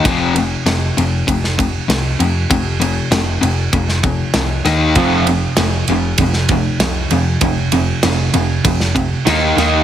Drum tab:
RD |x-x-x-x-x-x-x-x-|x-x-x-x-x-x-x-x-|x-x-x-x-x-x-x-x-|x-x-x-x-x-x-x-x-|
SD |----o----o--o---|----o----o--o-o-|----o----o--o---|----o----o--o-o-|
BD |o-------o-o-----|o-------o-o-----|o-------o-o-----|o-------o-o-----|